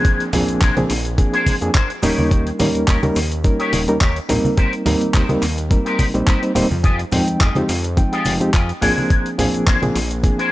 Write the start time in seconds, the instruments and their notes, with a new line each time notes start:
Already playing: reed electric piano F3 A#3 C4 D4 G#4, clean electric guitar D4 G#4 A#4 C5, downlifter
0.05 kick, closed hi-hat, cabasa
0.20 closed hi-hat
0.32 analog synth bass A#1, reed electric piano F3 A#3 C4 D4 G#4, muted clean electric guitar stroke, open hi-hat, low conga, cabasa
0.48 analog synth bass A#1, closed hi-hat, cabasa
0.61 analog synth bass A#1, clean electric guitar D4 G#4 A#4 C5, kick, clap, closed hi-hat, cabasa
0.77 analog synth bass A#1, reed electric piano F3 A#3 C4 D4 G#4, closed hi-hat, high conga
0.89 analog synth bass A#1, muted clean electric guitar stroke, open hi-hat, cabasa
1.05 muted clean electric guitar stroke, closed hi-hat, cabasa
1.18 reed electric piano F3 A#3 C4 D4 G#4, kick, closed hi-hat, cabasa
1.33 clean electric guitar D4 G#4 A#4 C5, closed hi-hat
1.46 kick, open hi-hat, high conga, cabasa
1.61 analog synth bass F2, reed electric piano F3 A#3 C4 D4 G#4, closed hi-hat, cabasa
1.74 clean electric guitar D4 G#4 A#4 C5, kick, clap, closed hi-hat, cabasa
1.90 closed hi-hat
2.02 analog synth bass D#1, reed electric piano G3 A#3 C#4 D#4 A#4, clean electric guitar D#4 G4 A#4 C#5, open hi-hat, low conga, cabasa
2.18 analog synth bass D#2, high conga, cabasa
2.31 kick, closed hi-hat, cabasa
2.47 closed hi-hat
2.59 analog synth bass D#2, reed electric piano G3 A#3 C#4 D#4 A#4, muted clean electric guitar stroke, open hi-hat, low conga, cabasa
2.75 analog synth bass D#2, closed hi-hat, cabasa
2.87 analog synth bass D#2, clean electric guitar D#4 G4 A#4 C#5, kick, clap, closed hi-hat, cabasa
3.03 analog synth bass D#2, reed electric piano G3 A#3 C#4 D#4 A#4, closed hi-hat, high conga
3.15 analog synth bass D#2, muted clean electric guitar stroke, open hi-hat, cabasa
3.31 muted clean electric guitar stroke, closed hi-hat, cabasa
3.44 reed electric piano G3 A#3 C#4 D#4 A#4, kick, closed hi-hat, cabasa
3.59 clean electric guitar D#4 G4 A#4 C#5, closed hi-hat
3.73 analog synth bass D#1, open hi-hat, high conga, cabasa
3.88 analog synth bass D#2, reed electric piano G3 A#3 C#4 D#4 A#4, closed hi-hat, cabasa
4.00 analog synth bass D#2, clean electric guitar D#4 G4 A#4 C#5, kick, clap, closed hi-hat, cabasa
4.16 closed hi-hat
4.29 analog synth bass A#1, reed electric piano G3 A#3 C4 D#4 A#4, muted clean electric guitar stroke, open hi-hat, low conga, cabasa
4.45 high conga, cabasa
4.57 clean electric guitar D#4 G4 A#4 C5, kick, closed hi-hat, cabasa
4.73 closed hi-hat
4.85 analog synth bass D#2, reed electric piano G3 A#3 C4 D#4 A#4, muted clean electric guitar stroke, open hi-hat, low conga, cabasa
5.01 analog synth bass D#2, closed hi-hat, cabasa
5.13 analog synth bass D#2, clean electric guitar D#4 G4 A#4 C5, kick, clap, closed hi-hat, cabasa
5.29 analog synth bass D#2, reed electric piano G3 A#3 C4 D#4 A#4, closed hi-hat, high conga
5.42 analog synth bass D#2, muted clean electric guitar stroke, clap, open hi-hat, cabasa
5.57 muted clean electric guitar stroke, closed hi-hat, cabasa
5.70 reed electric piano G3 A#3 C4 D#4 A#4, kick, closed hi-hat, cabasa
5.85 clean electric guitar D#4 G4 A#4 C5, closed hi-hat
5.99 kick, open hi-hat, high conga, cabasa
6.14 analog synth bass A#1, reed electric piano G3 A#3 C4 D#4 C5, closed hi-hat, cabasa
6.26 clean electric guitar D#4 G4 A#4 C5, kick, clap, closed hi-hat, cabasa
6.42 reed electric piano G3 A#3 C4 D#4 C5, closed hi-hat
6.55 analog synth bass D#1, reed electric piano G3 A#3 C4 D#4 C5, muted clean electric guitar stroke, open hi-hat, low conga, cabasa
6.71 analog synth bass F2, high conga, cabasa
6.83 clean electric guitar F4 G4 G#4 D#5, kick, closed hi-hat, cabasa
6.99 closed hi-hat
7.12 analog synth bass F2, reed electric piano F3 G#3 C4 D#4 G5, muted clean electric guitar stroke, open hi-hat, low conga, cabasa
7.28 analog synth bass F2, closed hi-hat, cabasa
7.40 analog synth bass F2, clean electric guitar F4 G4 G#4 D#5, kick, clap, closed hi-hat, cabasa
7.55 analog synth bass F2, reed electric piano F3 G#3 C4 D#4 G4, closed hi-hat, high conga
7.68 analog synth bass F2, muted clean electric guitar stroke, open hi-hat, cabasa
7.84 muted clean electric guitar stroke, closed hi-hat, cabasa
7.97 reed electric piano F3 G#3 C4 D#4 G5, kick, closed hi-hat, cabasa
8.12 clean electric guitar F4 G4 G#4 D#5, closed hi-hat
8.25 analog synth bass F1, open hi-hat, high conga, cabasa
8.40 analog synth bass F2, reed electric piano F3 G#3 C4 D#4 G4, closed hi-hat, cabasa
8.53 analog synth bass F2, clean electric guitar F4 G4 G#4 D#5, kick, clap, closed hi-hat, cabasa
8.69 closed hi-hat
8.81 analog synth bass A#1, reed electric piano F3 A#3 C4 D4 G#4, clean electric guitar D4 G#4 A#4 C5, open hi-hat, low conga, cabasa
8.97 high conga, cabasa
9.10 kick, closed hi-hat, cabasa
9.26 closed hi-hat
9.38 analog synth bass A#1, reed electric piano F3 A#3 C4 D4 G#4, muted clean electric guitar stroke, open hi-hat, low conga, cabasa
9.54 analog synth bass A#1, closed hi-hat, cabasa
9.66 analog synth bass A#1, clean electric guitar D4 G#4 A#4 C5, kick, clap, closed hi-hat, cabasa
9.82 analog synth bass A#1, reed electric piano F3 A#3 C4 D4 G#4, closed hi-hat, high conga
9.95 analog synth bass A#1, muted clean electric guitar stroke, open hi-hat, cabasa
10.10 muted clean electric guitar stroke, closed hi-hat, cabasa
10.23 reed electric piano F3 A#3 C4 D4 G#4, kick, closed hi-hat, cabasa
10.38 clean electric guitar D4 G#4 A#4 C5, closed hi-hat